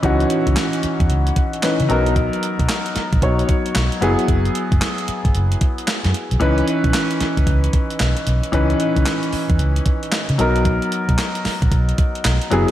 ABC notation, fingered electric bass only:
X:1
M:4/4
L:1/16
Q:"Swing 16ths" 1/4=113
K:C#dor
V:1 name="Fingered electric bass" clef=bass
C,,2 z C,, z3 E,, C,,2 z3 C, B,,,2- | B,,,2 z B,,, z3 A,,, B,,,2 z2 B,,, z F,,, z | F,,,2 z F,,, z3 G,,, F,,,2 z3 F,, z B,,, | C,,2 z B,,, z3 C,, C,,2 z2 B,,, z B,,, z |
C,,2 z C,, z3 E,, C,,2 z3 C, B,,,2- | B,,,2 z B,,, z3 A,,, B,,,2 z2 B,,, z F,,, z |]